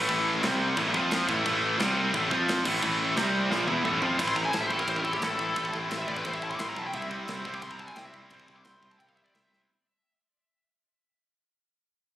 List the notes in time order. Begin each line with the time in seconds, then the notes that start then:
0.09 A1 A2 E3 A3, kick, crash
0.42 C2 C3 G3 C4, snare, crash
0.77 A1 A2 E3 A3, kick, crash
0.94 F2 F3 C4 F4, kick
1.11 snare, crash
1.28 A1 A2 E3 A3, kick
1.46 A1 A2 E3 A3, kick, crash
1.80 C2 C3 G3 C4, snare, crash
2.14 A1 A2 E3 A3, kick, crash
2.30 F2 F3 C4 F4, kick
2.48 snare, crash
2.65 A1 A2 E3 A3, kick, crash
2.82 A1 A2 E3 A3, kick, crash
3.15 C2 C3 G3 C4, snare, crash
3.50 A#1 A#2 F3 A#3, snare
3.67 E2 E3 B3 E4, high tom
3.84 A1 A2 E3 A3, mid tom
4.01 F2 F3 C4 F4, floor tom
4.18 A1 A2 E3 A3 C4 E4, kick, crash
4.26 C4 E4 C6, kick
4.34 A1 C4 E4 A#5, kick
4.42 C4 E4 G#5
4.49 C4 E4, ride bell
4.54 A1 C4 E4 A5, snare
4.60 E5
4.65 C4 E4 C5
4.69 A1 A2 E3 A3 C4 E4 A4, kick
4.78 C4 E4 A#4, kick
4.86 A1 C4 E4 C5, kick, ride bell
4.94 C4 E4 A#4, kick
5.01 C4 E4 A4, kick
5.09 C4 E4 G4, kick
5.17 A2 C4 E4
5.22 A1 E3 A3 C4 E4 A4, snare, ride bell
5.32 C4 E4
5.39 A1 C4 E4, kick
5.47 C4 E4
5.55 A1 A2 E3 A3 C4 E4, kick, ride bell
5.64 C4 E4, kick
5.71 A1 C4 E4, kick
5.77 C4 E4
5.85 C4 E4
5.90 A1 C4 E4, snare, ride bell
5.99 C4 E4 E5
6.06 A1 A2 E3 A3 C4 E4 D5, kick
6.16 C4 E4 B4, kick
6.24 A1 C4 E4 C5, kick, ride bell
6.32 C4 E4 E5, kick
6.39 C4 E4 A5, kick
6.47 C4 E4 C6, kick
6.54 C4 E4 D6
6.59 A1 A2 E3 A3 C4 C6, snare, ride bell
6.63 E4
6.69 C4 E4 A#5
6.76 B1 C4 E4 A5, kick
6.85 C4 E4 G5
6.93 C2 C3 G3 C4 E4 E5, kick, ride bell
7.00 C4 E4, kick
7.07 C2 C4 E4, kick
7.16 C4 E4
7.23 C4 E4
7.28 C2 C4, snare, ride bell
7.32 E4
7.39 C4 E4
7.45 C2 C3 G3 C4 E4, kick
7.54 C4 E4 D6, kick
7.62 C2 C4 E4 C6, kick, ride bell
7.69 C4 E4 A#5, kick
7.77 C4 E4 A5, kick
7.84 C4 E4 G#5, kick
7.91 C4 E4
7.96 C2 C3 G3 C4 E4 G5, snare, ride bell
8.05 C4 E4 E5
8.14 C2 C4 E4, kick
8.22 C4 E4
8.30 C2 C3 G3 C4 E4, kick, ride bell
8.38 C4 E4, kick
8.47 C2 C4 E4, kick
8.54 C4 E4 D6
8.61 C2 C4 E4 C6, ride bell
8.66 snare
8.70 C4 E4
8.77 C4 E4
8.83 C2 C3 G3 C4 E4, kick
8.91 C4 E4 A5, kick
8.99 C2 C4 E4 G5, kick, ride bell
9.07 C4 E4 F5, kick
9.15 C4 E4 E5, kick
9.22 C4 E4 D5, kick
9.29 C3 C4 E4
9.34 C2 G3 C4 E5, snare, ride bell
9.38 E4
9.45 C4 E4
9.51 C2 C4 E4, snare
9.60 C4 E4